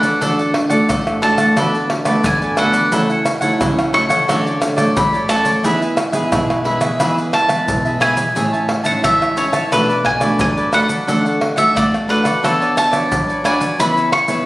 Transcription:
Already playing: F#3 A3 D4 F#4 F#5
0.02 A4 B4 D5, pandeiro, shaker
0.21 D3 A3 D4 F#4 A4 D5 F#5, pandeiro, shaker, surdo
0.39 A4 D5 F#5, pandeiro, shaker
0.54 muted cavaquinho stroke, pandeiro, tamborim
0.70 A3 D4 F#4 A4 D5 F#5, pandeiro, shaker
0.89 A2 D4 A4 D5 F#5, pandeiro, tamborim, shaker, surdo
1.07 pandeiro, tamborim, shaker
1.22 A3 D4 F#4 A4 D5 F#5 A5, pandeiro
1.38 A4 D5 F#5, pandeiro, tamborim, shaker
1.56 D3 A3 B3 D4 F#4 A4 B4 D5, pandeiro, tamborim, shaker, surdo
1.74 A4 B4 D5, pandeiro, shaker
1.90 muted cavaquinho stroke, pandeiro, tamborim
2.05 A3 B3 F#4 A4 B4 D5, pandeiro, tamborim, shaker
2.24 D3 G#5, pandeiro, shaker, surdo
2.42 A4 B4 D5, pandeiro, shaker
2.57 A3 B3 D4 F#4 A4 B4 D5 F#5, pandeiro, tamborim, shaker
2.73 A4 B4 D5, pandeiro, shaker
2.92 C#3 F#3 A3 E4 A4 C#5 F#5, pandeiro, shaker, surdo
3.09 A4 C#5 F#5, pandeiro, shaker
3.25 muted cavaquinho stroke, pandeiro, tamborim, shaker
3.41 F#3 A3 E4 A4 C#5 F#5, pandeiro, shaker
3.60 C#3 E4 A4 C#5 F#5, pandeiro, tamborim, shaker, surdo
3.79 pandeiro, tamborim, shaker
3.93 F#3 A3 E4 A4 C#5 F#5 C#6, pandeiro
4.09 A4 C#5 F#5, pandeiro, tamborim, shaker
4.28 D3 F#3 A3 C#4 F#4 A4 C#5 D5, pandeiro, tamborim, shaker, surdo
4.46 A4 C#5 D5, pandeiro, shaker
4.61 muted cavaquinho stroke, pandeiro, tamborim, shaker
4.77 F#3 A3 A4 C#5 D5, pandeiro, tamborim, shaker
4.96 A2 B5, pandeiro, shaker, surdo
5.13 A4 C#5 D5, pandeiro, shaker
5.29 F#3 A3 C#4 F#4 A4 C#5 D5 A5, pandeiro, tamborim, shaker
5.44 A4 C#5 D5, pandeiro, shaker
5.63 E3 G#3 B3 E4 G#4 B4 E5, pandeiro, shaker, surdo
5.81 G#4 B4 E5, pandeiro, shaker
5.96 muted cavaquinho stroke, pandeiro, tamborim, shaker
6.12 G#3 B3 E4 G#4 B4 E5, pandeiro, shaker
6.31 B2 E4 G#4 B4 E5, pandeiro, tamborim, shaker, surdo
6.50 pandeiro, tamborim, shaker
6.64 G#3 B3 E4 G#4 B4 E5, pandeiro
6.81 G#4 B4 E5, pandeiro, tamborim, shaker
7.00 E3 G#3 B3 E4 G#4 B4 E5, pandeiro, tamborim, shaker, surdo
7.17 G#4 B4 E5, pandeiro, shaker
7.32 A5, muted cavaquinho stroke, pandeiro, tamborim
7.48 G#3 B3 E4 B4 E5, pandeiro, tamborim, shaker
7.68 B2, pandeiro, shaker, surdo
7.85 G#4 B4 E5, pandeiro, shaker
8.00 G#3 B3 E4 G#4 B4 E5 G#5, pandeiro, tamborim, shaker
8.16 G#4 B4 E5, pandeiro, shaker
8.35 A2 G#3 C#4 E4 G#4 C#5 E5 A5, pandeiro, shaker, surdo
8.53 C#5 E5 A5, pandeiro, shaker
8.68 muted cavaquinho stroke, pandeiro, tamborim
8.84 G#3 C#4 E4 C#5 E5 F#5 A5, pandeiro, shaker
9.04 E3 C#5 E5 A5, pandeiro, tamborim, shaker, surdo
9.22 pandeiro, tamborim, shaker
9.36 G#3 C#4 E4 G#4 C#5 E5 A5, pandeiro, shaker
9.53 C#5 E5 A5, pandeiro, tamborim, shaker
9.72 B2 A3 D4 F#4 A4 B4 D5, pandeiro, tamborim, shaker, surdo
9.89 A4 B4 D5, pandeiro, shaker
10.04 G#5, muted cavaquinho stroke, pandeiro, tamborim, surdo
10.20 A3 D4 F#4 A4 B4 D5, pandeiro, tamborim, shaker
10.39 F#3 G#5, pandeiro, shaker, surdo
10.57 A4 B4 D5, pandeiro, shaker
10.72 A3 D4 F#4 A4 B4 D5 F#5, pandeiro, tamborim, shaker
10.88 A4 B4 D5, pandeiro, shaker
11.07 D3 A3 D4 F#4 A4 D5 F#5, pandeiro, shaker, surdo
11.25 A4 D5 F#5, pandeiro, shaker
11.41 muted cavaquinho stroke, pandeiro, tamborim
11.56 A3 D4 F#4 A4 D5 E5 F#5, pandeiro, shaker
11.75 A3 D4 A4 D5 F#5, pandeiro, tamborim, shaker, surdo
11.94 pandeiro, tamborim, shaker
12.08 A3 D4 F#4 A4 B4 D5 F#5, pandeiro
12.24 A4 D5 F#5, pandeiro, tamborim, shaker
12.42 B3 D4 F#4 A4 B4 C#5 D5, pandeiro, tamborim, shaker, surdo
12.61 B4 C#5 D5, pandeiro, shaker
12.75 A5, muted cavaquinho stroke, pandeiro, tamborim, shaker
12.91 D4 F#4 B4 C#5 D5, pandeiro, tamborim, shaker
13.11 F#3, pandeiro, shaker, surdo
13.28 B4 C#5 D5, pandeiro, shaker
13.44 D4 F#4 B4 C#5 D5 G#5, pandeiro, tamborim, shaker
13.60 B4 C#5 D5, pandeiro, shaker
13.79 C#3 B3 E4 G#4 B4 C#5 E5 B5, pandeiro, shaker, surdo
13.97 B4 C#5 E5, pandeiro, shaker
14.12 C#6, pandeiro, tamborim
14.28 B3 E4 G#4 B4 C#5 E5, pandeiro, shaker

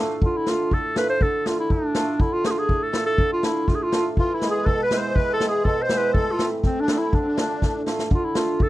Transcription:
Already playing: A2
0.00 A3
0.09 snare
0.22 D3 F4, kick
0.37 E4
0.46 A3 D4 F4, snare
0.71 A2 A4, kick
0.95 A3 D4 F4 B4, snare
1.10 C5
1.21 D3 A4, kick
1.46 A3 D4 F4, snare
1.60 E4
1.70 A2 D4, kick
1.95 A3 D4 F4, snare
2.20 D3 E4, kick
2.33 F4
2.44 A3 D4 F4 G#4, snare
2.51 F4
2.59 G#4
2.69 A2, kick
2.83 A4
2.92 A3 D4 F4, snare
3.06 A4, snare
3.18 D3, kick
3.33 F4
3.43 A3 D4 E4 F4, snare
3.68 A2 F4, kick, snare
3.75 G#4
3.83 F4
3.92 A3 D4 F4, snare
4.17 E3 F4, kick
4.33 E4
4.42 G#3 B3 E4, snare
4.50 G#4
4.61 B4
4.65 B2 A4, kick
4.83 B4
4.91 G#3 B3 E4, snare
4.98 C5
5.16 E3 B4, kick
5.31 A4
5.40 G#3 B3 E4, snare
5.48 G#4
5.64 B2 A4, kick
5.82 C5
5.89 G#3 B3 E4, snare
5.98 B4
6.13 A2 A4, kick
6.31 F4
6.39 A3 C4 E4, snare
6.63 A2 C4, kick, snare
6.80 D4
6.88 A3 C4 E4, snare
6.97 E4
7.12 D3 D4, kick
7.20 C4
7.26 D4
7.37 A3 D4 F4, snare
7.62 A2, kick, snare
7.86 A3 D4 F4, snare
7.99 snare
8.10 D3 F4, kick
8.25 E4
8.35 A3 D4 F4, snare
8.59 A2 A4, kick

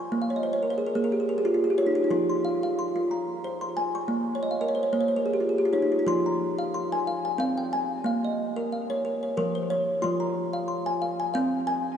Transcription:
Already playing: G#5 C6 C#6
0.12 A#3
0.22 F5
0.30 C#5
0.36 D#5
0.43 C5
0.53 C#5
0.63 A#4
0.70 C5
0.78 G#4
0.87 A#4
0.95 A#3 G#4
1.04 A#4
1.12 G4
1.20 G#4
1.29 A#4
1.38 G#4
1.45 F4 G4
1.54 F4
1.64 G#4
1.70 G4
1.78 F4 C#5
1.87 D#4
1.95 F4
2.04 D#4
2.11 F3 F4
2.30 C6
2.45 F5
2.63 F5
2.79 C6
2.96 F4
3.11 A#5
3.44 C5
3.61 C6
3.77 G#5
3.95 C#6
4.08 A#3
4.35 C#5
4.43 D#5
4.51 F5
4.61 A#4 D#5
4.68 C#5
4.75 C5
4.83 C#5
4.93 A#3 C5
5.01 C#5
5.08 C5
5.16 A#4
5.26 G#4
5.34 G4
5.40 F4
5.49 G#4
5.58 G4
5.65 F4
5.73 D#4 C#5
5.82 D#4
5.92 F4
5.99 D#4
6.07 F3 F4 C6
6.26 A#5
6.59 F5
6.74 C6
6.92 G#5
7.07 F5
7.25 G#5
7.38 C4 F5
7.58 G5
7.73 G#5
8.04 A#3 F5
8.25 D#5
8.56 A#4
8.72 F5
8.90 C#5
9.05 A#4
9.23 C#5
9.37 F3 A#4
9.55 C5
9.70 C#5
10.02 F3 F4 C6
10.20 A#5
10.53 F5
10.68 C6
10.86 G#5
11.02 F5
11.20 G#5
11.34 C4 F5
11.67 G#5

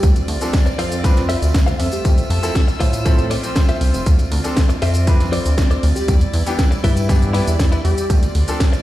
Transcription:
0.03 D2 C4 F4 D5, kick, closed hi-hat, tambourine, shaker
0.16 closed hi-hat, tambourine, shaker
0.28 D2, open hi-hat
0.41 F3 C4 D4 A4, closed hi-hat, tambourine, shaker
0.53 kick, snare, closed hi-hat, tambourine, shaker
0.66 muted clean electric guitar stroke, tambourine, shaker
0.78 F2 F4 A4 C5 F5, open hi-hat
0.92 closed hi-hat, tambourine, shaker
1.04 F3 C4 D4 B4, kick, closed hi-hat, tambourine, shaker
1.17 snare, tambourine, shaker
1.29 F4 A4 C5 E5, open hi-hat
1.42 D2, tambourine, shaker
1.54 kick, snare, closed hi-hat, tambourine, shaker
1.66 F4 A4 C5 F5, tambourine, shaker
1.79 F2 A3 F4 A4 C5 E5 E6, open hi-hat
1.92 G4, tambourine, shaker
2.05 F2, kick, closed hi-hat, tambourine, shaker
2.18 closed hi-hat, tambourine, shaker
2.30 F2 A4, open hi-hat
2.42 F3 C4 E4 A4, closed hi-hat, tambourine, shaker
2.55 kick, snare, closed hi-hat, tambourine, shaker
2.68 muted clean electric guitar stroke, tambourine, shaker
2.80 A2 F4 A4 C5 F5, kick, open hi-hat
2.93 closed hi-hat, tambourine, shaker
3.05 F3 C4 E4 A4 C5, kick, closed hi-hat, tambourine, shaker
3.17 C5, tambourine, shaker
3.30 F4 A4 C5 D5, snare, open hi-hat
3.43 F3 C4 C5, closed hi-hat, tambourine, shaker
3.55 kick, snare, closed hi-hat, tambourine, shaker
3.68 F4 A4 C5 E5, closed hi-hat, tambourine, shaker
3.81 C2, open hi-hat
3.93 F1, muted clean electric guitar stroke, tambourine, shaker
4.06 D2 C4 D5, kick, closed hi-hat, tambourine, shaker
4.19 closed hi-hat, tambourine, shaker
4.32 D2, open hi-hat
4.44 F3 C4 D4 A4, closed hi-hat, tambourine, shaker
4.57 kick, snare, closed hi-hat, tambourine, shaker
4.69 muted clean electric guitar stroke, tambourine, shaker
4.82 F2 F4 A4 C5 E5, open hi-hat
4.94 closed hi-hat, tambourine, shaker
5.07 F3 C4 D4 B4, kick, closed hi-hat, tambourine, shaker
5.20 snare, tambourine, shaker
5.32 F4 A4 C5 D5, open hi-hat
5.45 D2, tambourine, shaker
5.58 kick, snare, closed hi-hat, tambourine, shaker
5.70 F4 A4 C5 D5, tambourine, shaker
5.83 D2, open hi-hat
5.96 G4, muted clean electric guitar stroke, tambourine, shaker
6.08 E2 G3 E4, kick, closed hi-hat, tambourine, shaker
6.21 closed hi-hat, tambourine, shaker
6.33 E2, open hi-hat
6.46 E3 B3 D4 G4, closed hi-hat, tambourine, shaker
6.59 kick, snare, closed hi-hat, tambourine, shaker
6.71 muted clean electric guitar stroke, tambourine, shaker
6.84 G2 E4 G4 B4 E5, kick, open hi-hat
6.97 E4, closed hi-hat, tambourine, shaker
7.09 E3 B3 D4 G4, kick, closed hi-hat, tambourine, shaker
7.22 tambourine, shaker
7.33 E3 B3 D4 E4 G4 B4 E5, snare, open hi-hat
7.47 E2, closed hi-hat, tambourine, shaker
7.59 kick, snare, closed hi-hat, tambourine, shaker
7.72 E4 G4 B4 D5, closed hi-hat, tambourine, shaker
7.84 E2 G4, open hi-hat
7.97 muted clean electric guitar stroke, tambourine, shaker
8.10 D2 C4 F4 D5, kick, closed hi-hat, tambourine, shaker
8.23 closed hi-hat, tambourine, shaker
8.35 D2, open hi-hat
8.48 F3 C4 D4 A4, closed hi-hat, tambourine, shaker
8.60 kick, snare, closed hi-hat, tambourine, shaker
8.73 muted clean electric guitar stroke, tambourine, shaker

